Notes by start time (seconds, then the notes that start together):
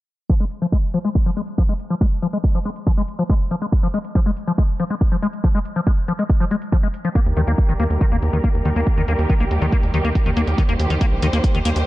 0.30 F3, kick, closed hi-hat
0.40 G#3, closed hi-hat
0.51 closed hi-hat
0.62 F3, closed hi-hat
0.72 G#3, kick, closed hi-hat
0.94 F3, closed hi-hat
1.05 G#3, closed hi-hat
1.15 kick, closed hi-hat
1.26 F3, closed hi-hat
1.37 G#3, closed hi-hat
1.47 closed hi-hat
1.58 F3, kick, closed hi-hat
1.69 G#3, closed hi-hat
1.80 closed hi-hat
1.90 F3, closed hi-hat
2.01 G#3, kick, closed hi-hat
2.12 closed hi-hat
2.22 F3, closed hi-hat
2.33 G#3, closed hi-hat
2.44 kick, closed hi-hat
2.55 F3, closed hi-hat
2.65 G#3, closed hi-hat
2.76 closed hi-hat
2.87 F3, kick, closed hi-hat
2.97 G#3, closed hi-hat
3.08 closed hi-hat
3.19 F3, closed hi-hat
3.30 G#3, kick, closed hi-hat
3.40 closed hi-hat
3.51 F3, closed hi-hat
3.62 G#3, closed hi-hat
3.72 kick, closed hi-hat
3.83 F3, closed hi-hat
3.94 G#3, closed hi-hat
4.05 closed hi-hat
4.15 F3, kick, closed hi-hat
4.26 G#3
4.37 closed hi-hat
4.47 F3, closed hi-hat
4.58 G#3, kick, closed hi-hat
4.69 closed hi-hat
4.80 F3, closed hi-hat
4.90 G#3, closed hi-hat
5.01 kick, closed hi-hat
5.12 F3, closed hi-hat
5.22 G#3, closed hi-hat
5.33 closed hi-hat
5.44 F3, kick, closed hi-hat
5.55 G#3, closed hi-hat
5.65 closed hi-hat
5.76 F3, closed hi-hat
5.87 G#3, kick, closed hi-hat
5.98 closed hi-hat
6.08 F3, closed hi-hat
6.19 G#3, closed hi-hat
6.30 kick, closed hi-hat
6.40 F3, closed hi-hat
6.51 G#3, closed hi-hat
6.62 closed hi-hat
6.72 F3, kick, closed hi-hat
6.83 G#3, closed hi-hat
6.94 closed hi-hat
7.05 F3, closed hi-hat
7.15 D#3 G3 A#3 G4 A#4, kick, closed hi-hat
7.26 D#2, closed hi-hat
7.37 D#2 D#3, closed hi-hat
7.47 D#2 A#3, closed hi-hat
7.58 kick, closed hi-hat
7.69 A#1 D#3
7.80 D#2 A#3, closed hi-hat
7.90 D#2, closed hi-hat
8.01 D#3, kick, closed hi-hat
8.12 D#2 A#3, closed hi-hat
8.22 D#2, closed hi-hat
8.33 D#2 D#3, closed hi-hat
8.44 A#3, kick, closed hi-hat
8.55 D#2, closed hi-hat
8.65 D#2 D#3, closed hi-hat
8.76 D#2 A#3, closed hi-hat
8.87 kick, closed hi-hat
8.97 D#2 D#3, closed hi-hat
9.08 D#2 A#3, closed hi-hat
9.19 D#2, closed hi-hat
9.30 D#3, kick, closed hi-hat
9.40 A#1 A#3, closed hi-hat
9.51 D#2, closed hi-hat
9.62 D#2 D#3, closed hi-hat
9.72 A#3, kick, closed hi-hat
9.83 D#2, closed hi-hat
9.94 D#2 D#3, closed hi-hat
10.05 D#2 A#3, closed hi-hat
10.15 kick, closed hi-hat
10.26 D#2 D#3, closed hi-hat
10.37 D#2 A#3, closed hi-hat
10.47 D#2, closed hi-hat
10.58 D#3 C5, kick, closed hi-hat
10.69 D#2 A#3, closed hi-hat
10.80 D#2, closed hi-hat
10.90 D#2 D#3, closed hi-hat
11.01 A#3, kick, closed hi-hat
11.12 A#1
11.22 D#2 D#3, closed hi-hat
11.33 D#2 A#3, closed hi-hat
11.44 kick, closed hi-hat
11.55 D#2 D#3, closed hi-hat
11.65 D#2 A#3, closed hi-hat
11.76 D#2, closed hi-hat